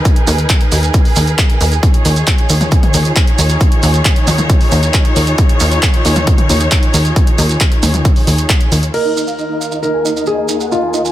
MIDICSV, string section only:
0, 0, Header, 1, 2, 480
1, 0, Start_track
1, 0, Tempo, 444444
1, 56, Time_signature, 4, 2, 24, 8
1, 12009, End_track
2, 0, Start_track
2, 0, Title_t, "String section"
2, 0, Program_c, 0, 48
2, 0, Note_on_c, 0, 51, 80
2, 0, Note_on_c, 0, 63, 75
2, 0, Note_on_c, 0, 68, 75
2, 0, Note_on_c, 0, 70, 74
2, 0, Note_on_c, 0, 71, 90
2, 1932, Note_off_c, 0, 51, 0
2, 1933, Note_off_c, 0, 63, 0
2, 1933, Note_off_c, 0, 71, 0
2, 1934, Note_off_c, 0, 70, 0
2, 1976, Note_on_c, 0, 51, 83
2, 1976, Note_on_c, 0, 63, 77
2, 1976, Note_on_c, 0, 65, 74
2, 1977, Note_on_c, 0, 73, 93
2, 9613, Note_off_c, 0, 51, 0
2, 9613, Note_off_c, 0, 63, 0
2, 9613, Note_off_c, 0, 65, 0
2, 9613, Note_off_c, 0, 68, 0
2, 9613, Note_off_c, 0, 73, 0
2, 9655, Note_on_c, 0, 39, 79
2, 9655, Note_on_c, 0, 51, 70
2, 9655, Note_on_c, 0, 58, 72
2, 9655, Note_on_c, 0, 65, 72
2, 9655, Note_on_c, 0, 70, 83
2, 12009, Note_off_c, 0, 39, 0
2, 12009, Note_off_c, 0, 51, 0
2, 12009, Note_off_c, 0, 58, 0
2, 12009, Note_off_c, 0, 65, 0
2, 12009, Note_off_c, 0, 70, 0
2, 12009, End_track
0, 0, End_of_file